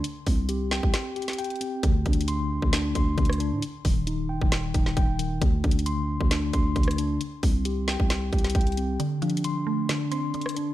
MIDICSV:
0, 0, Header, 1, 5, 480
1, 0, Start_track
1, 0, Tempo, 447761
1, 45, Time_signature, 4, 2, 24, 8
1, 11511, End_track
2, 0, Start_track
2, 0, Title_t, "Tine electric piano"
2, 0, Program_c, 0, 4
2, 285, Note_on_c, 0, 60, 78
2, 524, Note_on_c, 0, 67, 96
2, 766, Note_on_c, 0, 79, 86
2, 1233, Note_off_c, 0, 67, 0
2, 1246, Note_on_c, 0, 67, 82
2, 1472, Note_off_c, 0, 79, 0
2, 1485, Note_on_c, 0, 79, 92
2, 1711, Note_off_c, 0, 60, 0
2, 1724, Note_on_c, 0, 60, 77
2, 1965, Note_off_c, 0, 60, 0
2, 1965, Note_off_c, 0, 67, 0
2, 1965, Note_off_c, 0, 79, 0
2, 1966, Note_on_c, 0, 50, 98
2, 2206, Note_on_c, 0, 62, 88
2, 2446, Note_on_c, 0, 84, 99
2, 2913, Note_off_c, 0, 62, 0
2, 2926, Note_on_c, 0, 62, 90
2, 3152, Note_off_c, 0, 84, 0
2, 3165, Note_on_c, 0, 84, 93
2, 3392, Note_off_c, 0, 50, 0
2, 3404, Note_on_c, 0, 50, 80
2, 3632, Note_off_c, 0, 62, 0
2, 3645, Note_on_c, 0, 62, 91
2, 3885, Note_off_c, 0, 50, 0
2, 3885, Note_off_c, 0, 62, 0
2, 3885, Note_off_c, 0, 84, 0
2, 4124, Note_on_c, 0, 51, 76
2, 4363, Note_on_c, 0, 63, 92
2, 4602, Note_on_c, 0, 79, 80
2, 5072, Note_off_c, 0, 63, 0
2, 5085, Note_on_c, 0, 63, 77
2, 5311, Note_off_c, 0, 79, 0
2, 5324, Note_on_c, 0, 79, 96
2, 5552, Note_off_c, 0, 51, 0
2, 5565, Note_on_c, 0, 51, 88
2, 5803, Note_on_c, 0, 50, 93
2, 5805, Note_off_c, 0, 51, 0
2, 5805, Note_off_c, 0, 63, 0
2, 5805, Note_off_c, 0, 79, 0
2, 6044, Note_on_c, 0, 62, 79
2, 6283, Note_on_c, 0, 84, 98
2, 6754, Note_off_c, 0, 62, 0
2, 6767, Note_on_c, 0, 62, 96
2, 6992, Note_off_c, 0, 84, 0
2, 7005, Note_on_c, 0, 84, 91
2, 7233, Note_off_c, 0, 50, 0
2, 7246, Note_on_c, 0, 50, 84
2, 7471, Note_off_c, 0, 62, 0
2, 7484, Note_on_c, 0, 62, 84
2, 7725, Note_off_c, 0, 62, 0
2, 7725, Note_off_c, 0, 84, 0
2, 7726, Note_off_c, 0, 50, 0
2, 7966, Note_on_c, 0, 60, 74
2, 8206, Note_on_c, 0, 67, 89
2, 8448, Note_on_c, 0, 79, 87
2, 8913, Note_off_c, 0, 67, 0
2, 8926, Note_on_c, 0, 67, 82
2, 9151, Note_off_c, 0, 79, 0
2, 9164, Note_on_c, 0, 79, 89
2, 9390, Note_off_c, 0, 60, 0
2, 9403, Note_on_c, 0, 60, 78
2, 9644, Note_off_c, 0, 60, 0
2, 9645, Note_off_c, 0, 79, 0
2, 9645, Note_on_c, 0, 50, 97
2, 9646, Note_off_c, 0, 67, 0
2, 9888, Note_on_c, 0, 62, 88
2, 10126, Note_on_c, 0, 84, 96
2, 10593, Note_off_c, 0, 62, 0
2, 10606, Note_on_c, 0, 62, 93
2, 10831, Note_off_c, 0, 84, 0
2, 10844, Note_on_c, 0, 84, 95
2, 11072, Note_off_c, 0, 50, 0
2, 11085, Note_on_c, 0, 50, 84
2, 11312, Note_off_c, 0, 62, 0
2, 11325, Note_on_c, 0, 62, 88
2, 11511, Note_off_c, 0, 50, 0
2, 11511, Note_off_c, 0, 62, 0
2, 11511, Note_off_c, 0, 84, 0
2, 11511, End_track
3, 0, Start_track
3, 0, Title_t, "Synth pluck"
3, 0, Program_c, 1, 84
3, 9645, Note_on_c, 1, 50, 99
3, 9883, Note_on_c, 1, 53, 83
3, 10362, Note_on_c, 1, 57, 81
3, 10591, Note_off_c, 1, 50, 0
3, 10604, Note_on_c, 1, 50, 80
3, 10847, Note_on_c, 1, 60, 88
3, 11076, Note_off_c, 1, 50, 0
3, 11084, Note_off_c, 1, 53, 0
3, 11089, Note_on_c, 1, 50, 90
3, 11511, Note_off_c, 1, 50, 0
3, 11511, Note_off_c, 1, 57, 0
3, 11511, Note_off_c, 1, 60, 0
3, 11511, End_track
4, 0, Start_track
4, 0, Title_t, "808-style bass"
4, 0, Program_c, 2, 38
4, 285, Note_on_c, 2, 36, 102
4, 868, Note_off_c, 2, 36, 0
4, 892, Note_on_c, 2, 36, 103
4, 1001, Note_off_c, 2, 36, 0
4, 1965, Note_on_c, 2, 38, 108
4, 2196, Note_off_c, 2, 38, 0
4, 2205, Note_on_c, 2, 38, 103
4, 2788, Note_off_c, 2, 38, 0
4, 2813, Note_on_c, 2, 38, 102
4, 3151, Note_off_c, 2, 38, 0
4, 3166, Note_on_c, 2, 38, 102
4, 3396, Note_off_c, 2, 38, 0
4, 3406, Note_on_c, 2, 38, 106
4, 3772, Note_on_c, 2, 45, 100
4, 3788, Note_off_c, 2, 38, 0
4, 3879, Note_off_c, 2, 45, 0
4, 4126, Note_on_c, 2, 27, 98
4, 4709, Note_off_c, 2, 27, 0
4, 4733, Note_on_c, 2, 27, 102
4, 5072, Note_off_c, 2, 27, 0
4, 5087, Note_on_c, 2, 27, 102
4, 5316, Note_off_c, 2, 27, 0
4, 5326, Note_on_c, 2, 27, 107
4, 5786, Note_off_c, 2, 27, 0
4, 5806, Note_on_c, 2, 38, 112
4, 6036, Note_off_c, 2, 38, 0
4, 6046, Note_on_c, 2, 38, 102
4, 6629, Note_off_c, 2, 38, 0
4, 6652, Note_on_c, 2, 38, 104
4, 6991, Note_off_c, 2, 38, 0
4, 7006, Note_on_c, 2, 38, 100
4, 7236, Note_off_c, 2, 38, 0
4, 7245, Note_on_c, 2, 38, 106
4, 7706, Note_off_c, 2, 38, 0
4, 7966, Note_on_c, 2, 36, 101
4, 8549, Note_off_c, 2, 36, 0
4, 8572, Note_on_c, 2, 36, 101
4, 8911, Note_off_c, 2, 36, 0
4, 8926, Note_on_c, 2, 36, 100
4, 9156, Note_off_c, 2, 36, 0
4, 9165, Note_on_c, 2, 36, 106
4, 9626, Note_off_c, 2, 36, 0
4, 11511, End_track
5, 0, Start_track
5, 0, Title_t, "Drums"
5, 44, Note_on_c, 9, 42, 89
5, 152, Note_off_c, 9, 42, 0
5, 284, Note_on_c, 9, 46, 79
5, 285, Note_on_c, 9, 36, 91
5, 391, Note_off_c, 9, 46, 0
5, 393, Note_off_c, 9, 36, 0
5, 522, Note_on_c, 9, 42, 87
5, 630, Note_off_c, 9, 42, 0
5, 764, Note_on_c, 9, 38, 92
5, 872, Note_off_c, 9, 38, 0
5, 892, Note_on_c, 9, 36, 90
5, 999, Note_off_c, 9, 36, 0
5, 1004, Note_on_c, 9, 38, 122
5, 1004, Note_on_c, 9, 42, 84
5, 1111, Note_off_c, 9, 38, 0
5, 1111, Note_off_c, 9, 42, 0
5, 1245, Note_on_c, 9, 42, 42
5, 1309, Note_off_c, 9, 42, 0
5, 1309, Note_on_c, 9, 42, 52
5, 1372, Note_off_c, 9, 42, 0
5, 1372, Note_on_c, 9, 42, 62
5, 1373, Note_on_c, 9, 38, 61
5, 1428, Note_off_c, 9, 42, 0
5, 1428, Note_on_c, 9, 42, 72
5, 1480, Note_off_c, 9, 38, 0
5, 1485, Note_off_c, 9, 42, 0
5, 1485, Note_on_c, 9, 42, 65
5, 1548, Note_off_c, 9, 42, 0
5, 1548, Note_on_c, 9, 42, 55
5, 1612, Note_off_c, 9, 42, 0
5, 1612, Note_on_c, 9, 42, 46
5, 1668, Note_off_c, 9, 42, 0
5, 1668, Note_on_c, 9, 42, 38
5, 1725, Note_off_c, 9, 42, 0
5, 1725, Note_on_c, 9, 42, 82
5, 1832, Note_off_c, 9, 42, 0
5, 1964, Note_on_c, 9, 42, 88
5, 1965, Note_on_c, 9, 36, 120
5, 2072, Note_off_c, 9, 36, 0
5, 2072, Note_off_c, 9, 42, 0
5, 2204, Note_on_c, 9, 42, 44
5, 2206, Note_on_c, 9, 36, 92
5, 2285, Note_off_c, 9, 42, 0
5, 2285, Note_on_c, 9, 42, 59
5, 2313, Note_off_c, 9, 36, 0
5, 2365, Note_off_c, 9, 42, 0
5, 2365, Note_on_c, 9, 42, 76
5, 2442, Note_off_c, 9, 42, 0
5, 2442, Note_on_c, 9, 42, 86
5, 2550, Note_off_c, 9, 42, 0
5, 2813, Note_on_c, 9, 36, 86
5, 2920, Note_off_c, 9, 36, 0
5, 2925, Note_on_c, 9, 38, 118
5, 2925, Note_on_c, 9, 42, 85
5, 3032, Note_off_c, 9, 38, 0
5, 3032, Note_off_c, 9, 42, 0
5, 3165, Note_on_c, 9, 42, 73
5, 3166, Note_on_c, 9, 36, 89
5, 3272, Note_off_c, 9, 42, 0
5, 3273, Note_off_c, 9, 36, 0
5, 3405, Note_on_c, 9, 36, 106
5, 3405, Note_on_c, 9, 42, 40
5, 3485, Note_off_c, 9, 42, 0
5, 3485, Note_on_c, 9, 42, 53
5, 3513, Note_off_c, 9, 36, 0
5, 3532, Note_on_c, 9, 37, 91
5, 3566, Note_off_c, 9, 42, 0
5, 3566, Note_on_c, 9, 42, 64
5, 3639, Note_off_c, 9, 37, 0
5, 3646, Note_off_c, 9, 42, 0
5, 3646, Note_on_c, 9, 42, 77
5, 3754, Note_off_c, 9, 42, 0
5, 3885, Note_on_c, 9, 42, 85
5, 3992, Note_off_c, 9, 42, 0
5, 4125, Note_on_c, 9, 46, 80
5, 4126, Note_on_c, 9, 36, 93
5, 4232, Note_off_c, 9, 46, 0
5, 4233, Note_off_c, 9, 36, 0
5, 4363, Note_on_c, 9, 42, 85
5, 4471, Note_off_c, 9, 42, 0
5, 4733, Note_on_c, 9, 36, 90
5, 4840, Note_off_c, 9, 36, 0
5, 4845, Note_on_c, 9, 38, 120
5, 4845, Note_on_c, 9, 42, 84
5, 4952, Note_off_c, 9, 42, 0
5, 4953, Note_off_c, 9, 38, 0
5, 5085, Note_on_c, 9, 42, 67
5, 5087, Note_on_c, 9, 36, 89
5, 5192, Note_off_c, 9, 42, 0
5, 5194, Note_off_c, 9, 36, 0
5, 5213, Note_on_c, 9, 38, 62
5, 5320, Note_off_c, 9, 38, 0
5, 5325, Note_on_c, 9, 42, 63
5, 5326, Note_on_c, 9, 36, 103
5, 5432, Note_off_c, 9, 42, 0
5, 5433, Note_off_c, 9, 36, 0
5, 5566, Note_on_c, 9, 42, 85
5, 5674, Note_off_c, 9, 42, 0
5, 5806, Note_on_c, 9, 36, 122
5, 5806, Note_on_c, 9, 42, 88
5, 5913, Note_off_c, 9, 36, 0
5, 5913, Note_off_c, 9, 42, 0
5, 6045, Note_on_c, 9, 42, 47
5, 6046, Note_on_c, 9, 36, 97
5, 6125, Note_off_c, 9, 42, 0
5, 6125, Note_on_c, 9, 42, 61
5, 6153, Note_off_c, 9, 36, 0
5, 6205, Note_off_c, 9, 42, 0
5, 6205, Note_on_c, 9, 42, 74
5, 6283, Note_off_c, 9, 42, 0
5, 6283, Note_on_c, 9, 42, 90
5, 6390, Note_off_c, 9, 42, 0
5, 6652, Note_on_c, 9, 36, 92
5, 6760, Note_off_c, 9, 36, 0
5, 6764, Note_on_c, 9, 42, 85
5, 6765, Note_on_c, 9, 38, 119
5, 6871, Note_off_c, 9, 42, 0
5, 6872, Note_off_c, 9, 38, 0
5, 7004, Note_on_c, 9, 42, 73
5, 7006, Note_on_c, 9, 36, 92
5, 7112, Note_off_c, 9, 42, 0
5, 7113, Note_off_c, 9, 36, 0
5, 7245, Note_on_c, 9, 36, 103
5, 7245, Note_on_c, 9, 42, 39
5, 7326, Note_off_c, 9, 42, 0
5, 7326, Note_on_c, 9, 42, 53
5, 7352, Note_off_c, 9, 36, 0
5, 7372, Note_on_c, 9, 37, 92
5, 7405, Note_off_c, 9, 42, 0
5, 7405, Note_on_c, 9, 42, 64
5, 7479, Note_off_c, 9, 37, 0
5, 7486, Note_off_c, 9, 42, 0
5, 7486, Note_on_c, 9, 42, 77
5, 7593, Note_off_c, 9, 42, 0
5, 7726, Note_on_c, 9, 42, 87
5, 7833, Note_off_c, 9, 42, 0
5, 7965, Note_on_c, 9, 46, 80
5, 7966, Note_on_c, 9, 36, 95
5, 8072, Note_off_c, 9, 46, 0
5, 8073, Note_off_c, 9, 36, 0
5, 8203, Note_on_c, 9, 42, 88
5, 8310, Note_off_c, 9, 42, 0
5, 8445, Note_on_c, 9, 38, 92
5, 8552, Note_off_c, 9, 38, 0
5, 8572, Note_on_c, 9, 36, 87
5, 8680, Note_off_c, 9, 36, 0
5, 8684, Note_on_c, 9, 42, 86
5, 8685, Note_on_c, 9, 38, 119
5, 8791, Note_off_c, 9, 42, 0
5, 8792, Note_off_c, 9, 38, 0
5, 8925, Note_on_c, 9, 42, 42
5, 8926, Note_on_c, 9, 36, 88
5, 8989, Note_off_c, 9, 42, 0
5, 8989, Note_on_c, 9, 42, 53
5, 9033, Note_off_c, 9, 36, 0
5, 9052, Note_off_c, 9, 42, 0
5, 9052, Note_on_c, 9, 42, 63
5, 9053, Note_on_c, 9, 38, 61
5, 9108, Note_off_c, 9, 42, 0
5, 9108, Note_on_c, 9, 42, 70
5, 9160, Note_off_c, 9, 38, 0
5, 9164, Note_off_c, 9, 42, 0
5, 9164, Note_on_c, 9, 42, 64
5, 9165, Note_on_c, 9, 36, 106
5, 9228, Note_off_c, 9, 42, 0
5, 9228, Note_on_c, 9, 42, 55
5, 9272, Note_off_c, 9, 36, 0
5, 9292, Note_off_c, 9, 42, 0
5, 9292, Note_on_c, 9, 42, 45
5, 9349, Note_off_c, 9, 42, 0
5, 9349, Note_on_c, 9, 42, 37
5, 9406, Note_off_c, 9, 42, 0
5, 9406, Note_on_c, 9, 42, 82
5, 9513, Note_off_c, 9, 42, 0
5, 9645, Note_on_c, 9, 42, 87
5, 9752, Note_off_c, 9, 42, 0
5, 9885, Note_on_c, 9, 42, 45
5, 9965, Note_off_c, 9, 42, 0
5, 9965, Note_on_c, 9, 42, 59
5, 10045, Note_off_c, 9, 42, 0
5, 10045, Note_on_c, 9, 42, 74
5, 10123, Note_off_c, 9, 42, 0
5, 10123, Note_on_c, 9, 42, 87
5, 10230, Note_off_c, 9, 42, 0
5, 10604, Note_on_c, 9, 42, 89
5, 10605, Note_on_c, 9, 38, 124
5, 10711, Note_off_c, 9, 42, 0
5, 10712, Note_off_c, 9, 38, 0
5, 10844, Note_on_c, 9, 42, 73
5, 10951, Note_off_c, 9, 42, 0
5, 11084, Note_on_c, 9, 42, 39
5, 11164, Note_off_c, 9, 42, 0
5, 11164, Note_on_c, 9, 42, 53
5, 11211, Note_on_c, 9, 37, 92
5, 11244, Note_off_c, 9, 42, 0
5, 11244, Note_on_c, 9, 42, 64
5, 11318, Note_off_c, 9, 37, 0
5, 11326, Note_off_c, 9, 42, 0
5, 11326, Note_on_c, 9, 42, 75
5, 11433, Note_off_c, 9, 42, 0
5, 11511, End_track
0, 0, End_of_file